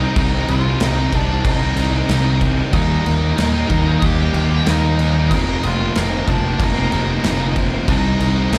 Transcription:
Already playing: C3 D#4 D#5
0.00 G3 C4 D#4
0.16 C2 C3 G3 C4 D#4 D#5, kick, crash
0.32 G3 C4 D#4
0.48 C2 C3 G3 C4 D#4 F4 F5, crash
0.65 G3 C4 D#4
0.79 C2 C3 G3 C4 D#4, snare, crash
0.84 D#5
0.97 G3 C4 D#4
1.12 C2 C3 G3 C4 D4 D#4 D5, kick, crash
1.28 G3 C4 D#4
1.45 C2 D#4 D#5, kick, crash
1.61 G3 C4 D#4
1.76 C2 C3 G3 C4 D#4, crash
1.93 G3 C4 D#4
2.09 C2 C3 G3 C4 D#4, snare, crash
2.41 C3 G3 C4 D#4, kick, crash
2.58 G3 C4 D#4
2.73 D#2 D#3 G3 A#3 D#4 D#5, kick, crash
2.89 G3 A#3 D#4
3.05 D#2 D#3 G3 A#3 D#4, crash
3.20 G3 A#3 D#4
3.36 D#2 D#3 G3 A#3 D#4, snare, crash
3.53 G3 A#3 D#4
3.69 D#2 D#3 G3 A#3 D#4, kick, crash
3.85 G3 A#3 D#4
4.02 D#2 G4 G5, kick, crash
4.18 G3 A#3 D#4
4.34 D#2 D#3 G3 A#3 D#4, crash
4.50 G3 A#3 D#4
4.66 D#2 D#3 G3 A#3 D#4 D#5, snare, crash
4.99 D#3 G3 A#3 D#4, crash
5.15 G3 A#3 D#4
5.31 F1 F2 C3 F3 A#3 C4 D#4 D#5, kick, crash
5.47 F3 A#3 C4
5.63 F1 C3 F3 A#3 C4 F4 F5, crash
5.78 F3 A#3 C4
5.95 F1 F2 C3 F3 A#3 C4 D#4 D#5, snare, crash
6.10 F3 A#3 C4
6.28 F1 C3 F3 A#3 C4 D4 D5, kick, crash
6.43 F3 A#3 C4
6.59 F1 D#4 D#5, kick, crash
6.77 F3 A#3 C4
6.92 F1 C3 F3 A#3 C4, crash
7.08 F3 A#3 C4
7.24 F1 F2 C3 F3 A#3 C4, snare, crash
7.56 C3 F3 A#3 C4, kick, crash
7.73 F3 A#3 C4
7.88 C2 C3 G3 C4 D#4 D#5, kick, crash
8.04 G3 C4 D#4
8.20 C2 C3 G3 C4 D#4, crash
8.36 G3 C4 D#4
8.52 C2 C3 G3 C4 D#4, snare, crash

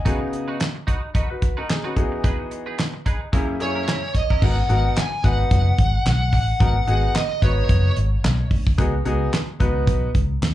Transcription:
Already playing: D#5 G#5
0.05 C#3 B3 D#4 F#4 G#4 B4, kick, closed hi-hat
0.21 muted clean electric guitar stroke
0.33 muted clean electric guitar stroke, closed hi-hat
0.48 D#4 F#4 B4
0.60 snare, clap, closed hi-hat
0.75 muted clean electric guitar stroke
0.87 D#4 F#4 B4, kick, closed hi-hat
1.02 muted clean electric guitar stroke
1.14 D#4 F#4 A#4 B4 D#5, kick, closed hi-hat
1.30 F#4 B4, muted clean electric guitar stroke
1.42 muted clean electric guitar stroke, kick, closed hi-hat
1.57 D#4 F#4 A#4 B4
1.69 D#4 G#4, muted clean electric guitar stroke, snare, clap, closed hi-hat
1.84 C#4 D#4 F#4 B4
1.96 E3 B3 D#4 F#4 G#4, muted clean electric guitar stroke, kick, closed hi-hat
2.12 muted clean electric guitar stroke
2.24 D#4 G#4 B4, kick, closed hi-hat
2.39 muted clean electric guitar stroke
2.51 muted clean electric guitar stroke, closed hi-hat
2.66 D#4 G#4 B4
2.78 snare, clap, closed hi-hat
2.94 muted clean electric guitar stroke
3.06 D#4 G#4 B4, kick, closed hi-hat
3.21 muted clean electric guitar stroke
3.32 F#2 A#3 C#4 E4 G#4 A#4, kick, closed hi-hat
3.48 muted clean electric guitar stroke
3.60 F#2 A#3 C#4 E4 G#4 C#5, muted clean electric guitar stroke, closed hi-hat
3.75 C#4 E4 A#4
3.87 C#4 E4 A#4, snare, clap, closed hi-hat
4.03 muted clean electric guitar stroke
4.15 D#5, muted clean electric guitar stroke, kick, closed hi-hat
4.30 C#4 E4 A#4, kick
4.42 G#1 B3 D#4 F#4 A#4 F#5, kick, crash
4.69 G#1 B3 D#4 F#4 A#4, closed hi-hat
4.96 G#5, snare, clap, closed hi-hat
5.23 G#1 B3 D#4 F#4 B4 F#5, kick, closed hi-hat
5.51 F#1, kick, closed hi-hat
5.78 G#1, kick, closed hi-hat
6.06 B1, snare, clap, closed hi-hat
6.33 A1 F#5, kick, open hi-hat
6.60 G#1 B3 D#4 F#4 A#4, kick, closed hi-hat
6.87 G#1 B3 D#4 F#4 G#4, closed hi-hat
7.15 D#5, snare, clap, closed hi-hat
7.41 G#1 B3 D#4 F#4 B4 C#5, kick, closed hi-hat
7.69 F#1, kick, closed hi-hat
7.96 G#1, closed hi-hat
8.24 B1, snare, clap, closed hi-hat
8.51 D2, kick, open hi-hat
8.67 kick
8.78 C#2 B3 D#4 F#4 G#4, kick, closed hi-hat
9.05 C#2 B3 D#4 F#4 G#4, closed hi-hat
9.33 snare, clap, closed hi-hat
9.60 C#2 B3 D#4 F#4 B4, kick, closed hi-hat
9.87 B1, kick, closed hi-hat
10.15 C#2, kick, closed hi-hat
10.42 D#2, snare, clap, closed hi-hat

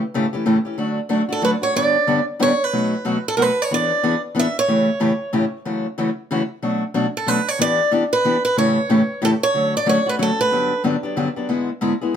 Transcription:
0.14 A2 C#3 E3 A3 C#4 G4
0.33 E3 A3 C#4 G4
0.46 A2 C#3 E3 A3 C#4 G4
0.65 E3 A3 C#4 G4
0.78 D3 F#3 A3 D4 F#4
1.09 D3 F#3 A3 D4 F#4
1.29 A3 D4 F#4 A4
1.42 D3 F#3 A3 D4 F#4 B4
1.62 A3 D4 F#4 C#5
1.75 G2 D3 G3 B3 D4 G4 D5
2.07 G2 D3 G3 B3 D4 G4
2.39 G2 D3 G3 B3 D4 G4 C#5
2.64 B4
2.73 B2 F#3 A3 D#4 F#4
3.05 B2 F#3 A3 D#4 F#4
3.28 A4
3.37 B2 F#3 A3 D#4 F#4 A#4
3.42 B4
3.62 C#5
3.71 E3 B3 D4 G#4 D5
4.03 E3 B3 D4 G#4
4.35 E3 B3 D4 G#4
4.39 E5
4.59 C#5
4.68 A2 C#3 E3 A3 C#4 G4
5.00 A2 C#3 E3 A3 C#4 G4
5.33 A2 C#3 E3 A3 C#4 G4
5.65 F#2 C#3 E3 A3 C#4 F#4
5.98 F#2 C#3 E3 A3 C#4 F#4
6.31 F#2 C#3 E3 A3 C#4 F#4
6.62 B2 F#3 A3 D4 F#4
6.94 B2 F#3 A3 D4 F#4
7.17 A4
7.27 B2 F#3 A3 D4 F#4 B4
7.48 C#5
7.59 E3 B3 D4 G4 D5
7.91 E3 B3 D4 G4
8.13 B4
8.25 E3 B3 D4 G4
8.45 B4
8.57 A2 C#3 E3 A3 C#4 G4 C#5
8.89 A2 C#3 E3 A3 C#4 G4
9.22 A2 C#3 E3 A3 C#4 G4 A4
9.43 C#5
9.54 D3 F#3 A3 C#4 F#4
9.77 D5
9.86 D3 F#3 A3 C#4 F#4 C#5
10.06 A3 C#4 F#4 B4
10.19 D3 F#3 A3 C#4 F#4 A4
10.39 A3 C#4 F#4 B4
10.52 G2 D3 F#3 B3 D4 G4
10.84 G2 D3 F#3 B3 D4 G4
11.03 F#3 B3 D4 G4
11.16 G2 D3 F#3 B3 D4 G4
11.36 F#3 B3 D4 G4
11.49 G#2 D3 G#3 B3 E4 G#4
11.81 G#2 D3 G#3 B3 E4 G#4
12.01 G#3 B3 E4 G#4

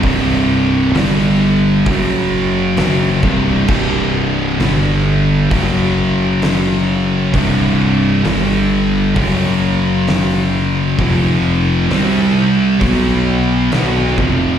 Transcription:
0.03 C1 C2 G2 C3, kick, open hi-hat
0.94 G1 G2 D3 G3, snare, open hi-hat
1.86 F#1 F#2 C#3 F#3, kick, open hi-hat
2.77 F#1 F#2 C#3 F#3, snare, open hi-hat
3.23 C1 C2 G2 C3, kick
3.68 C1 C2 G2 C3, kick, crash
4.60 G1 G2 D3 G3, snare, open hi-hat
5.51 F#1 F#2 C#3 F#3, kick, open hi-hat
6.42 snare, open hi-hat
7.33 C1 C2 G2 C3, kick, open hi-hat
8.25 G1 G2 D3 G3, snare, open hi-hat
9.16 F#1 F#2 C#3 F#3, kick, open hi-hat
10.08 snare, open hi-hat
10.98 F1 F2 C3 F3, kick, open hi-hat
11.89 C2 C3 G3 C4, snare, open hi-hat
12.81 B1 B2 F#3 B3, kick, open hi-hat
13.72 B1 B2 F#3 B3, snare, open hi-hat
14.18 F1 F2 C3 F3, kick

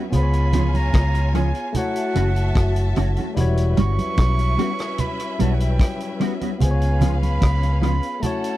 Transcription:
Already playing: G3 C#5
0.10 C#2 B3 F4 C#5 G#5, closed hi-hat, low conga
0.14 G#4 C5 B5
0.23 C#5
0.33 closed hi-hat
0.53 F3 B3 C#4 F4, closed hi-hat, low conga
0.74 A#5, closed hi-hat, high conga
0.93 C#2, kick, cross-stick, closed hi-hat, high conga
1.15 closed hi-hat
1.34 F3 B3 C#4 F4 G#5, closed hi-hat
1.55 closed hi-hat
1.73 A3 E4 F#4 E5 F#5 A5, closed hi-hat, high conga, low conga
1.79 C#5
1.96 closed hi-hat
2.15 F#1 E3 A3 C#4 F#4, closed hi-hat
2.36 closed hi-hat
2.55 F#1, kick, cross-stick, closed hi-hat
2.76 closed hi-hat
2.96 F#1 E3 A3 C#4 F#4, closed hi-hat
3.16 E3 A3 C#4 F#4, closed hi-hat, high conga
3.35 E1 G3 C#4 E4 F#4 B4 E5, closed hi-hat, low conga
3.41 C#5
3.57 closed hi-hat
3.77 G1 G3 B3 C#4 F#4 C#6, closed hi-hat, low conga
3.99 closed hi-hat, high conga
4.17 B1, kick, cross-stick, closed hi-hat, high conga
4.39 closed hi-hat
4.58 G3 B3 C#4 F#4, closed hi-hat
4.79 cross-stick, closed hi-hat
4.98 B5, closed hi-hat, high conga, low conga
5.19 closed hi-hat
5.38 B1 F#3 G3 B3 C#4 E4 F#4 C#5 A5, closed hi-hat
5.54 F#5
5.60 G5, closed hi-hat
5.79 kick, cross-stick, closed hi-hat
6.00 closed hi-hat
6.20 G3 B3 C#4 F#4, closed hi-hat
6.41 G3 B3 C#4 F#4, closed hi-hat, high conga
6.58 C#2 B3 C#4 F4 G#4 B4 F5 G#5, closed hi-hat, low conga
6.64 C5
6.71 C#5
6.81 closed hi-hat
7.01 F3 B3 C#4 F4, closed hi-hat, low conga
7.22 B5, closed hi-hat, high conga
7.41 C#2, kick, cross-stick, closed hi-hat, high conga
7.63 closed hi-hat
7.82 F3 B3 C#4 F4 B5, closed hi-hat
8.03 closed hi-hat
8.20 A3 C#4 E4 A4 F#5 A5, closed hi-hat, high conga, low conga
8.24 F#4 C#5
8.44 closed hi-hat

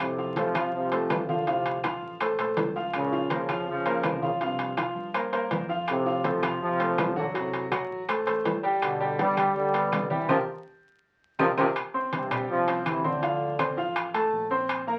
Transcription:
Already playing: F2
0.00 A2 C3, high conga, high timbale, claves
0.18 F3 F4 F5, high conga
0.36 C3 F3 A3 A4 C5, high conga, high timbale, low timbale
0.55 C2 F3 F4 F5, high conga, high timbale, claves
0.73 C3 F3, high conga
0.92 A3 A4 C5, high conga, high timbale
1.10 D2, high conga, high timbale, low timbale, claves
1.29 A#2 D3 F3 F4 F5, high conga
1.47 A2 C3 F3 F4 F5, high conga, high timbale
1.66 high conga, high timbale
1.84 F3 F4 F5, high conga, high timbale, low timbale, claves
2.02 A1, high conga
2.20 A3 A4 C5, high conga, high timbale, claves
2.38 A#1 A3 A4 C5, high conga, high timbale
2.56 C#2, high conga, high timbale, low timbale
2.76 F3 F4 F5, high conga
2.93 A#2 C#3, high conga, high timbale, claves
3.12 F3 F4 F5, high conga
3.30 C#3 F3 A#3 A#4 C5, high conga, high timbale, low timbale
3.49 F2 F3 F4 F5, high conga, high timbale, claves
3.68 C#3 F3, high conga
3.86 A#3 A#4 C5, high conga, high timbale
4.03 C2, high conga, high timbale, low timbale, claves
4.22 A#2 C#3 F3 F4 F5, high conga
4.41 G2 C3 F3 F4 F5, high timbale
4.59 high conga, high timbale
4.77 F3 F4 F5, high conga, high timbale, low timbale, claves
4.96 G2, high conga
5.14 A#3 A#4 C5, high conga, high timbale, claves
5.32 A#3 A#4 C5, high conga, high timbale
5.51 F2, high conga, high timbale, low timbale
5.69 F3 F4 F5, high conga
5.88 A2 C3, high conga, high timbale, claves
6.06 F3 F4 F5, high conga
6.24 C3 F3 A3 A4 C5, high conga, high timbale, low timbale
6.42 F2 F3 F4 F5, high conga, high timbale, claves
6.61 C3 F3, high conga
6.79 A3 A4 C5, high conga, high timbale
6.98 F#2, high conga, high timbale, low timbale, claves
7.16 A#2 D3 F#3 F#4 F#5, high conga
7.34 A2 C3 F#3 F#4 F#5, high conga, high timbale
7.53 high conga, high timbale
7.71 F#3 F#4 F#5, high conga, high timbale, low timbale, claves
7.90 A1, high conga
8.08 A3 A4 C5, high conga, high timbale, claves
8.26 A1 A3 A4 C5, high conga, high timbale
8.45 G1, high conga, high timbale, low timbale
8.63 G3 G4 G5, high conga
8.82 B2 D3, high conga, high timbale, claves
9.00 G3 G4 G5, high conga
9.18 D3 G3 B3 B4 D5, high conga, high timbale, low timbale
9.37 D2 G3 G4 G5, high conga, high timbale, claves
9.55 D3 G3, high conga
9.73 B3 B4 D5, high conga, high timbale
9.92 C2, high conga, high timbale, low timbale, claves
10.10 C3 E3 G3 G4 G5, high conga
10.29 C2 A#2 C3 F3 G4 A#4 C5, high conga, high timbale, claves
11.39 C2 A#2 C3 F3 G4 A#4 C5, high conga, high timbale, claves
11.57 C2 A#2 C3 F3 G4 A#4 C5, high conga, high timbale, claves
11.76 high conga, high timbale, claves
11.94 C4 C5 C6, high conga
12.13 G2 C3, high conga, high timbale
12.31 G2 G3 G4 G5, low conga, high timbale, claves
12.49 C3 F3, high conga
12.68 C4 C5 C6, high conga, high timbale
12.85 D2 C3 E3, high conga, high timbale, claves
13.04 A2 D3 C4 C5 C6, high conga
13.22 F3 F4 F5, high conga, high timbale
13.41 high conga
13.59 C4 C5 C6, high conga, high timbale, claves
13.77 A1 F3 F4 F5
13.96 high conga, high timbale, claves
14.14 A3 A4 A5, high conga, high timbale
14.32 A#1, high conga
14.51 C4 C5 C6, high conga
14.69 high conga, high timbale, claves
14.87 A#3 A#4 A#5, high conga

